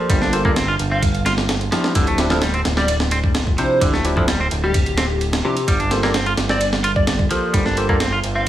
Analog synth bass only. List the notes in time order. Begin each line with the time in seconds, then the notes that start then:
0.10 G1
0.80 G1
1.95 D1
2.66 D1
3.82 D1
4.51 D1
5.68 G1
6.38 G1
7.54 G1
8.24 G1